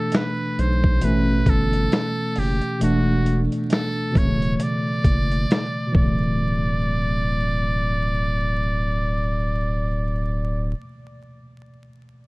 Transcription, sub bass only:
0.59 B1
1.03 A1
1.47 G1
2.37 F#1
2.82 E1
4.16 D1
5.05 F#1
5.95 D1

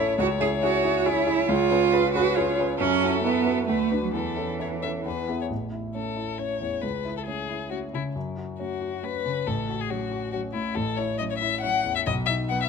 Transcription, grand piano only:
Already playing: A1 C#4 E4 A4
0.18 C#2
0.40 C#4 E4 G#4
0.63 C#4 E4 G#4
0.83 C#4 E4 G#4
1.06 C#4 E4 G#4
1.26 C#4 E4 G#4
1.49 C#2
1.71 C#4 G#4 B4
1.93 C#4 G#4 B4
2.15 C#4 G#4 B4
2.37 C#4 G#4 B4
2.59 C#4 G#4 B4
2.80 F#2
3.03 E4 F#4 A4
3.24 E4 F#4 A4
3.46 E4 F#4 A4
3.69 D2
3.91 D4 F#4 B4
4.13 E2
4.37 C#4 E4 A4
4.59 C#4 E4 A4
4.82 C#4 E4 A4
5.05 E2
5.28 B3 E4 G#4
5.50 A1
5.72 E4
5.95 C#4
6.16 E4
6.39 C#4
6.61 E2
6.83 C#2
7.05 E4
7.28 C#4
7.49 E4
7.71 C#4
7.93 C#3
8.16 F#2
8.37 F#4
8.59 C#4
8.81 F#4
9.03 C#4
9.25 C#3
9.47 A1
9.69 F#4
9.90 C#4
10.11 F#4
10.34 C#4
10.55 A2
10.76 A1
10.98 E4
11.20 C#4
11.41 E4
11.63 C#4
11.84 E2
12.07 B1
12.29 D#4
12.51 B3

